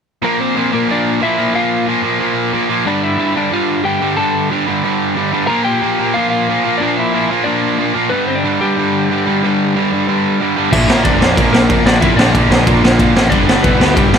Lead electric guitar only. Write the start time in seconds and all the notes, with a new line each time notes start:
0.24 A#3 A#4
0.39 C4 C5
0.74 A#3 A#4
0.91 D4 D5
1.23 E4 E5
1.55 F4 F5
2.87 D4 D5
3.03 E4 E5
3.37 D4 D5
3.53 F4 F5
3.84 G4 G5
4.16 A4 A5
5.47 A#4 A#5
5.65 G4 G5
6.14 F4 F5
6.30 F4 F5
6.78 D4 D5
6.97 E4 E5
7.44 D4 D5
8.10 B3 B4
8.27 C4 C5
8.35 D4 D5
8.61 G3 G4
10.73 E4 E5
11.04 D4 D5
11.36 A#3 A#4
11.53 A#3 A#4
11.86 D4 D5
12.01 E4 E5
12.17 D4 D5
13.30 D4 D5
13.63 B3 B4
13.94 G3 G4
14.10 G3 G4